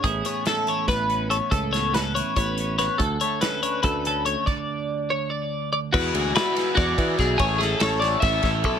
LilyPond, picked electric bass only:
\new Staff \with { instrumentName = "Picked electric bass" } { \clef bass \time 7/8 \key d \lydian \tempo 4 = 143 a,,8 r4. a,,4. | cis,2 a,,4. | d,8 r4. d,4. | r2. r8 |
e,8 d,8 r4 e,8 e8 b,,8 | a,,4 a,,4 a,,8 a,,8 b,,8 | }